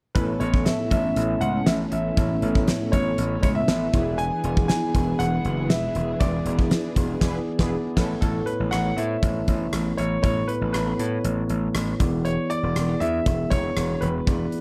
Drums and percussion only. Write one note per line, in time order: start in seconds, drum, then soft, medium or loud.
0.15 kick loud
0.15 closed hi-hat medium
0.41 closed hi-hat medium
0.54 kick medium
0.66 snare loud
0.66 closed hi-hat medium
0.91 kick medium
0.91 closed hi-hat medium
1.16 closed hi-hat loud
1.41 closed hi-hat medium
1.67 snare loud
1.67 closed hi-hat medium
1.92 closed hi-hat medium
2.17 kick loud
2.17 closed hi-hat medium
2.42 closed hi-hat medium
2.55 kick medium
2.68 snare loud
2.68 closed hi-hat medium
2.93 kick medium
2.93 closed hi-hat medium
3.18 closed hi-hat loud
3.43 kick medium
3.43 closed hi-hat medium
3.68 snare loud
3.68 closed hi-hat medium
3.93 kick loud
3.93 closed hi-hat medium
4.19 closed hi-hat medium
4.44 closed hi-hat medium
4.57 kick medium
4.69 snare loud
4.69 closed hi-hat medium
4.95 kick medium
4.95 closed hi-hat medium
5.20 closed hi-hat loud
5.45 closed hi-hat medium
5.70 snare loud
5.70 closed hi-hat medium
5.95 closed hi-hat medium
6.21 kick loud
6.21 closed hi-hat medium
6.46 closed hi-hat medium
6.59 kick medium
6.71 snare loud
6.71 closed hi-hat medium
6.96 kick medium
6.96 closed hi-hat medium
7.21 kick loud
7.21 snare loud
7.21 crash medium
7.59 kick loud
7.59 snare medium
7.97 kick loud
7.97 snare loud
7.97 crash medium
8.22 kick loud
8.22 closed hi-hat medium
8.47 closed hi-hat medium
8.72 cross-stick loud
8.72 closed hi-hat medium
8.98 closed hi-hat medium
9.23 kick loud
9.23 closed hi-hat medium
9.48 kick medium
9.48 closed hi-hat medium
9.73 cross-stick loud
9.73 closed hi-hat medium
9.98 closed hi-hat medium
10.24 kick loud
10.24 closed hi-hat medium
10.49 closed hi-hat medium
10.74 cross-stick loud
10.74 closed hi-hat medium
10.99 closed hi-hat medium
11.25 closed hi-hat loud
11.49 closed hi-hat medium
11.75 cross-stick loud
11.75 closed hi-hat medium
12.00 kick medium
12.00 closed hi-hat medium
12.25 closed hi-hat medium
12.50 closed hi-hat medium
12.76 cross-stick loud
12.76 closed hi-hat medium
13.01 closed hi-hat medium
13.26 kick loud
13.26 closed hi-hat medium
13.51 kick medium
13.51 closed hi-hat medium
13.77 cross-stick loud
13.77 closed hi-hat medium
14.02 closed hi-hat medium
14.27 kick loud
14.27 closed hi-hat medium
14.52 closed hi-hat medium